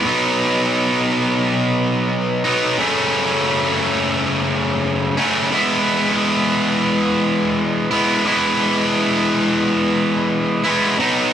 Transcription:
0.05 2.42 B2 medium
0.05 2.46 F#3 medium
0.05 2.43 B3 medium
0.05 2.43 D#4 medium
2.44 2.78 B2 medium
2.44 2.79 F#3 medium
2.44 2.77 B3 medium
2.44 2.77 D#4 medium
2.78 5.15 F#2 medium
2.78 5.16 C#3 medium
2.78 5.18 F#3 medium
2.78 5.17 A3 medium
2.78 5.16 C#4 medium
5.17 5.51 F#2 medium
5.17 5.51 C#3 medium
5.17 5.52 F#3 medium
5.17 5.50 A3 medium
5.17 5.50 C#4 medium
5.51 7.89 E3 medium
5.51 7.89 G#3 medium
5.51 7.91 B3 medium
5.51 7.90 E4 medium
7.91 8.24 E3 medium
7.91 8.24 G#3 medium
7.91 8.26 B3 medium
7.91 8.23 E4 medium
8.25 10.62 E3 medium
8.25 10.63 G#3 medium
8.25 10.63 B3 medium
8.25 10.63 E4 medium
10.64 10.98 E3 medium
10.64 10.97 G#3 medium
10.64 10.97 B3 medium
10.64 10.97 E4 medium
10.98 11.33 B2 medium
10.98 11.33 F#3 medium
10.98 11.33 B3 medium
10.98 11.33 D#4 medium

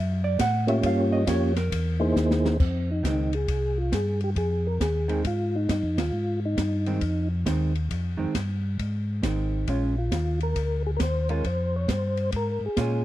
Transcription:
0.00 0.38 F#2 medium
0.00 0.24 E5 loud
0.24 0.39 D5 loud
0.39 0.82 A2 loud
0.39 0.68 F#5 loud
0.39 kick soft
0.39 snare medium
0.39 hi-hat pedal medium
0.39 ride medium
0.67 1.24 A#3 medium
0.67 1.24 C#4 medium
0.67 1.24 F4 medium
0.67 1.24 G4 medium
0.67 1.25 C#5 medium
0.67 0.83 E5 medium
0.67 ride soft
0.83 1.26 G2 medium
0.83 1.12 F5 loud
0.83 kick soft
0.83 ride medium
1.12 1.27 D#5 loud
1.27 1.70 F2 medium
1.27 1.53 A#3 medium
1.27 1.53 C#4 medium
1.27 1.53 F4 medium
1.27 1.53 G4 medium
1.27 1.53 C#5 medium
1.27 1.56 C#5 medium
1.27 kick soft
1.27 snare medium
1.27 hi-hat pedal medium
1.27 ride medium
1.56 2.12 A#4 medium
1.56 snare soft
1.56 ride medium
1.72 2.15 E2 medium
1.72 kick soft
1.72 ride medium
2.00 2.57 A#3 medium
2.00 2.57 D#4 medium
2.00 2.57 E4 medium
2.00 2.57 G#4 medium
2.00 2.57 C5 medium
2.15 2.58 D#2 loud
2.15 snare medium
2.15 hi-hat pedal medium
2.31 snare medium
2.45 snare medium
2.60 3.03 F2 medium
2.60 2.90 C4 medium
2.60 kick medium
2.60 crash medium
2.92 3.04 D#4 medium
3.03 3.47 C#2 medium
3.03 3.29 D#3 medium
3.03 3.30 G#3 medium
3.03 3.30 C4 medium
3.03 3.35 D#4 medium
3.03 kick soft
3.03 snare medium
3.03 hi-hat pedal medium
3.03 ride medium
3.33 3.79 G#4 medium
3.33 ride soft
3.48 3.91 C2 medium
3.48 kick soft
3.48 ride medium
3.78 3.93 F4 medium
3.92 4.35 G2 medium
3.92 4.21 G#4 medium
3.92 kick soft
3.92 snare medium
3.92 hi-hat pedal medium
3.92 ride medium
4.21 4.30 G4 medium
4.21 ride soft
4.36 4.79 F2 medium
4.36 4.68 G#4 medium
4.36 kick soft
4.36 ride medium
4.67 4.82 A#4 medium
4.80 5.24 D#2 medium
4.80 5.23 G#4 medium
4.80 kick soft
4.80 snare medium
4.80 hi-hat pedal medium
4.80 ride medium
5.08 5.23 D#3 medium
5.08 5.24 G#3 medium
5.08 5.24 C4 medium
5.08 ride soft
5.25 5.68 G#2 medium
5.25 5.57 F4 medium
5.25 kick soft
5.25 ride medium
5.56 5.69 D#4 medium
5.69 5.84 G2 medium
5.69 5.99 D#4 medium
5.69 kick soft
5.69 snare medium
5.69 hi-hat pedal medium
5.69 ride medium
5.83 5.98 F2 medium
5.97 6.12 D#2 medium
5.97 6.40 F4 loud
5.97 snare medium
5.97 ride medium
6.12 6.56 G#2 medium
6.46 7.28 D#4 medium
6.57 7.00 G2 medium
6.57 kick soft
6.57 snare medium
6.57 hi-hat pedal soft
6.57 ride medium
6.86 7.01 D#3 medium
6.86 7.01 G#3 medium
6.86 7.01 C4 medium
6.86 ride soft
7.01 7.45 F2 medium
7.01 kick soft
7.01 ride medium
7.46 7.89 D#2 medium
7.46 7.72 D#3 medium
7.46 7.72 G#3 medium
7.46 7.72 C4 medium
7.46 kick soft
7.46 snare medium
7.46 hi-hat pedal soft
7.46 ride medium
7.75 ride soft
7.91 8.17 F2 medium
7.91 kick soft
7.91 ride medium
8.17 8.27 F2 soft
8.17 8.32 D#3 medium
8.17 8.33 G#3 medium
8.17 8.33 C4 medium
8.35 8.78 G2 medium
8.35 kick soft
8.35 snare medium
8.35 hi-hat pedal medium
8.35 ride medium
8.79 9.22 G#2 medium
8.79 kick soft
8.79 ride medium
9.23 9.66 G#1 medium
9.23 9.67 D#3 medium
9.23 9.67 G#3 medium
9.23 9.68 C4 medium
9.23 kick soft
9.23 snare medium
9.23 hi-hat pedal medium
9.23 ride medium
9.67 10.11 A#1 medium
9.67 9.94 G#3 soft
9.67 9.94 C#4 medium
9.67 9.96 C#4 medium
9.67 9.94 F4 medium
9.67 kick soft
9.67 ride soft
9.98 10.11 F4 medium
10.12 10.55 D#2 medium
10.12 10.40 F4 medium
10.12 kick soft
10.12 snare medium
10.12 hi-hat pedal soft
10.12 ride medium
10.40 10.83 A#4 loud
10.40 ride soft
10.56 10.99 D2 medium
10.56 kick soft
10.56 ride medium
10.87 10.91 G#4 medium
10.97 11.43 D#2 medium
10.97 11.01 A#4 medium
10.97 kick soft
10.97 snare medium
10.97 hi-hat pedal soft
10.97 ride medium
11.03 11.29 C5 medium
11.29 11.43 G#3 medium
11.29 11.43 C#4 medium
11.29 11.43 F4 medium
11.29 11.45 A#4 medium
11.29 ride soft
11.44 11.87 F2 medium
11.44 11.76 C5 medium
11.44 kick soft
11.44 ride medium
11.76 11.90 C#5 medium
11.88 12.31 G2 medium
11.88 12.31 C5 medium
11.88 kick soft
11.88 snare medium
11.88 hi-hat pedal medium
11.88 ride medium
12.17 ride soft
12.32 12.59 G#2 medium
12.32 kick soft
12.32 ride medium
12.36 12.65 A#4 medium
12.61 12.69 G#2 soft
12.66 12.79 G#4 medium
12.77 13.05 A#2 medium
12.77 13.03 G#3 medium
12.77 13.03 C#4 medium
12.77 13.03 F4 medium
12.77 13.05 G#4 medium
12.77 kick soft
12.77 snare medium
12.77 hi-hat pedal soft
12.77 ride medium

